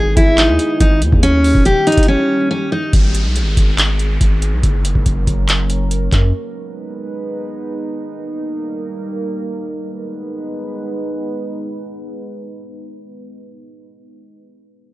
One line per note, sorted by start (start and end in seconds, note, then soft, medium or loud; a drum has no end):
0.00 0.15 G#1 loud
0.00 2.90 D#3 medium
0.00 1.21 G#3 medium
0.00 1.21 B3 medium
0.00 0.15 G#4 medium
0.00 1.21 G#4 medium
0.17 0.50 G#1 loud
0.17 0.37 E4 medium
0.17 kick medium
0.17 closed hi-hat medium
0.38 0.78 D#4 medium
0.38 clap loud
0.38 closed hi-hat medium
0.49 0.59 D#2 loud
0.59 closed hi-hat medium
0.80 1.03 G#1 loud
0.80 1.00 D#4 medium
0.80 kick medium
0.80 closed hi-hat medium
1.02 1.12 D#2 loud
1.02 closed hi-hat medium
1.12 1.53 D#2 loud
1.12 kick loud
1.23 2.92 G3 medium
1.23 2.92 A#3 medium
1.23 1.63 C#4 loud
1.23 2.92 G4 medium
1.23 closed hi-hat medium
1.44 open hi-hat loud
1.55 1.75 D#1 loud
1.55 kick loud
1.65 1.86 G4 medium
1.65 closed hi-hat medium
1.87 2.07 D#4 medium
1.87 closed hi-hat medium
1.92 closed hi-hat medium
1.97 2.08 G1 loud
1.97 kick loud
1.97 closed hi-hat medium
2.03 closed hi-hat medium
2.08 2.48 C#4 medium
2.51 2.71 C#4 medium
2.72 2.92 D#4 medium
2.93 3.27 G#1 loud
2.93 4.62 D#3 medium
2.93 4.62 G#3 medium
2.93 4.62 B3 medium
2.93 4.62 G#4 medium
2.93 kick loud
2.93 closed hi-hat medium
2.93 downlifter medium
3.15 closed hi-hat medium
3.25 3.43 B1 loud
3.36 closed hi-hat medium
3.41 3.56 G#1 loud
3.57 4.18 G#1 loud
3.57 kick medium
3.57 closed hi-hat medium
3.78 clap loud
3.78 closed hi-hat medium
3.99 closed hi-hat medium
4.21 4.54 G#1 loud
4.21 kick medium
4.21 closed hi-hat medium
4.42 closed hi-hat medium
4.53 4.63 B1 loud
4.63 4.94 F#1 loud
4.63 6.32 F#3 medium
4.63 6.32 A#3 medium
4.63 6.32 C#4 medium
4.63 6.32 A#4 medium
4.63 kick loud
4.63 closed hi-hat medium
4.85 closed hi-hat medium
4.95 5.06 F#1 loud
4.95 kick loud
5.06 5.26 F#1 loud
5.06 kick medium
5.06 closed hi-hat medium
5.27 6.09 F#1 loud
5.27 kick medium
5.27 closed hi-hat medium
5.49 clap loud
5.49 closed hi-hat medium
5.70 closed hi-hat medium
5.91 closed hi-hat medium
6.12 6.33 F#2 loud
6.12 kick loud
6.12 clap medium
6.12 closed hi-hat medium
6.34 8.02 G#3 medium
6.34 8.02 B3 medium
6.34 9.71 D#4 medium
6.34 8.02 B4 medium
8.04 9.72 G3 medium
8.04 9.72 A#3 medium
8.04 9.72 A#4 medium
9.74 13.91 G#3 medium
9.74 13.91 B3 medium
9.74 13.91 D#4 medium
9.74 13.91 B4 medium